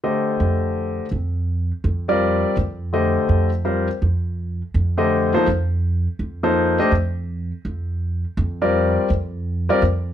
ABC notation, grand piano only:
X:1
M:4/4
L:1/8
Q:"Swing" 1/4=165
K:Bb
V:1 name="Grand piano"
[D,A,Gce]4- [D,A,Gce] z3 | z3 [G,CFBd]3 z2 | [D,A,Gce]3 z [G,CFBc] z3 | z3 [D,A,Gce]2 [F,B,EAc] z2 |
z3 [F,B,EAc]2 [A,DGce] z2 | z6 z [G,CFBd]- | [G,CFBd]2 z3 [G,CFBd] z2 |]